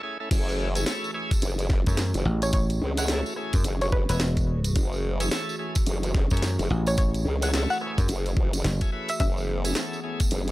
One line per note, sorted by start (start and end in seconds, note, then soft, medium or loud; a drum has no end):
0.03 0.18 A3 medium
0.03 0.18 C#4 medium
0.03 0.18 E4 medium
0.03 0.18 G#4 loud
0.20 0.29 A3 medium
0.20 0.29 C#4 medium
0.20 0.29 E4 medium
0.20 0.29 A4 medium
0.31 0.85 F#1 loud
0.31 10.52 E3 medium
0.31 0.69 A3 loud
0.31 10.52 A3 medium
0.31 0.69 C#4 medium
0.31 0.69 E4 loud
0.31 9.19 F#4 medium
0.31 10.52 G#4 medium
0.31 0.69 G#4 loud
0.31 kick loud
0.31 closed hi-hat medium
0.31 crash loud
0.31 tambourine medium
0.48 tambourine soft
0.75 0.85 A3 loud
0.75 0.85 C#4 medium
0.75 0.85 E4 medium
0.75 0.85 G#4 loud
0.75 closed hi-hat medium
0.75 tambourine medium
0.86 1.11 A3 medium
0.86 1.11 C#4 medium
0.86 1.11 E4 medium
0.86 1.11 A4 medium
0.86 snare loud
0.86 closed hi-hat medium
0.86 tambourine medium
1.04 tambourine soft
1.14 1.33 A3 medium
1.14 1.33 C#4 medium
1.14 1.33 E4 medium
1.14 1.33 G#4 medium
1.31 kick loud
1.31 closed hi-hat medium
1.31 tambourine medium
1.42 1.84 F#1 loud
1.42 closed hi-hat medium
1.42 tambourine medium
1.59 closed hi-hat soft
1.59 tambourine soft
1.70 kick loud
1.70 snare medium
1.86 2.12 F#2 medium
1.86 2.00 A3 medium
1.86 2.00 C#4 medium
1.86 2.00 E4 medium
1.86 2.00 G#4 medium
1.86 kick medium
1.86 closed hi-hat medium
1.86 tambourine medium
1.97 snare loud
1.97 closed hi-hat medium
1.97 tambourine medium
2.14 2.24 F#1 medium
2.14 closed hi-hat soft
2.14 tambourine soft
2.25 2.79 A1 loud
2.42 2.50 C#5 medium
2.42 cross-stick soft
2.42 closed hi-hat medium
2.42 tambourine medium
2.53 2.64 C#5 medium
2.53 kick loud
2.53 closed hi-hat medium
2.70 closed hi-hat soft
2.70 tambourine soft
2.81 3.23 C#2 medium
2.97 3.07 A3 loud
2.97 3.07 C#4 medium
2.97 3.07 E4 medium
2.97 3.07 G#4 loud
2.97 3.21 F#5 medium
2.97 closed hi-hat medium
2.97 tambourine medium
3.08 3.34 A3 medium
3.08 3.34 C#4 medium
3.08 3.34 E4 medium
3.08 3.34 A4 loud
3.08 snare loud
3.08 closed hi-hat medium
3.08 tambourine medium
3.26 tambourine soft
3.36 3.55 A3 medium
3.36 3.55 C#4 medium
3.36 3.55 E4 medium
3.36 3.55 G#4 medium
3.36 cross-stick soft
3.53 3.63 F#2 loud
3.53 kick loud
3.53 closed hi-hat medium
3.53 tambourine medium
3.64 4.06 F#1 loud
3.64 closed hi-hat medium
3.64 tambourine medium
3.81 3.90 C#5 medium
3.81 closed hi-hat soft
3.81 tambourine soft
3.92 4.03 B4 medium
3.92 kick loud
4.09 4.74 E1 medium
4.09 4.23 A3 medium
4.09 4.23 C#4 medium
4.09 4.23 E4 medium
4.09 4.23 G#4 medium
4.09 4.16 B4 medium
4.09 closed hi-hat medium
4.09 tambourine medium
4.20 snare loud
4.20 closed hi-hat medium
4.20 tambourine medium
4.37 kick medium
4.37 closed hi-hat soft
4.37 tambourine soft
4.64 closed hi-hat medium
4.64 tambourine medium
4.76 5.29 F#1 loud
4.76 kick loud
4.76 closed hi-hat medium
4.76 tambourine medium
4.92 tambourine soft
5.20 5.30 A3 loud
5.20 5.30 C#4 medium
5.20 5.30 E4 medium
5.20 5.30 G#4 loud
5.20 closed hi-hat medium
5.20 tambourine medium
5.31 5.56 A3 medium
5.31 5.56 C#4 medium
5.31 5.56 E4 medium
5.31 5.56 A4 medium
5.31 snare loud
5.31 closed hi-hat medium
5.31 tambourine medium
5.49 tambourine soft
5.59 5.78 A3 medium
5.59 5.78 C#4 medium
5.59 5.78 E4 medium
5.59 5.78 G#4 medium
5.75 kick loud
5.75 closed hi-hat medium
5.75 tambourine medium
5.86 6.29 F#1 loud
5.86 closed hi-hat medium
5.86 tambourine medium
6.03 closed hi-hat soft
6.03 tambourine soft
6.14 kick loud
6.14 snare medium
6.30 6.57 F#2 medium
6.30 6.45 A3 medium
6.30 6.45 C#4 medium
6.30 6.45 E4 medium
6.30 6.45 G#4 medium
6.30 kick medium
6.30 tambourine medium
6.37 closed hi-hat medium
6.42 snare loud
6.42 closed hi-hat medium
6.42 tambourine medium
6.59 6.68 F#1 loud
6.59 closed hi-hat soft
6.59 tambourine soft
6.70 7.24 A1 loud
6.86 6.94 C#5 medium
6.86 cross-stick soft
6.86 closed hi-hat medium
6.86 tambourine medium
6.98 7.09 C#5 medium
6.98 kick loud
6.98 closed hi-hat medium
6.98 tambourine medium
7.14 closed hi-hat soft
7.14 tambourine soft
7.25 7.67 C#2 medium
7.42 7.52 A3 loud
7.42 7.52 C#4 medium
7.42 7.52 E4 medium
7.42 7.52 G#4 loud
7.42 7.65 F#5 medium
7.42 closed hi-hat medium
7.42 tambourine medium
7.54 7.78 A3 medium
7.54 7.78 C#4 medium
7.54 7.78 E4 medium
7.54 7.78 A4 medium
7.54 snare loud
7.54 closed hi-hat medium
7.54 tambourine medium
7.70 8.26 F#5 medium
7.70 tambourine soft
7.81 8.00 A3 medium
7.81 8.00 C#4 medium
7.81 8.00 E4 medium
7.81 8.00 G#4 medium
7.81 cross-stick soft
7.87 cross-stick soft
7.91 cross-stick soft
7.98 8.07 F#2 medium
7.98 kick loud
7.98 cross-stick soft
7.98 closed hi-hat medium
7.98 tambourine medium
8.00 cross-stick soft
8.08 8.35 F#1 loud
8.08 closed hi-hat medium
8.08 tambourine medium
8.26 closed hi-hat soft
8.26 tambourine soft
8.37 8.63 F#1 medium
8.37 kick loud
8.53 closed hi-hat medium
8.53 tambourine medium
8.64 8.79 F#1 loud
8.64 snare loud
8.64 closed hi-hat medium
8.64 tambourine medium
8.81 8.91 A3 medium
8.81 8.91 C#4 medium
8.81 8.91 E4 medium
8.81 8.91 G#4 loud
8.81 kick medium
8.81 closed hi-hat soft
8.81 tambourine soft
8.92 9.11 A3 loud
8.92 9.11 C#4 medium
8.92 9.11 E4 medium
8.92 9.11 B4 loud
9.08 9.16 E5 medium
9.08 closed hi-hat medium
9.08 tambourine medium
9.20 9.74 F#1 loud
9.20 10.52 B3 medium
9.20 9.31 E5 medium
9.20 kick loud
9.20 closed hi-hat medium
9.20 tambourine medium
9.37 tambourine soft
9.65 9.74 A3 loud
9.65 9.74 C#4 medium
9.65 9.74 E4 medium
9.65 9.74 G#4 loud
9.65 closed hi-hat medium
9.65 tambourine medium
9.75 10.00 A3 medium
9.75 10.00 C#4 medium
9.75 10.00 E4 medium
9.75 10.00 A4 medium
9.75 snare loud
9.75 closed hi-hat medium
9.75 tambourine medium
9.93 tambourine soft
10.04 10.22 A3 medium
10.04 10.22 C#4 medium
10.04 10.22 E4 medium
10.04 10.22 G#4 medium
10.20 kick loud
10.20 closed hi-hat medium
10.20 tambourine medium
10.31 10.52 F#1 loud
10.31 closed hi-hat medium
10.31 tambourine medium
10.48 closed hi-hat soft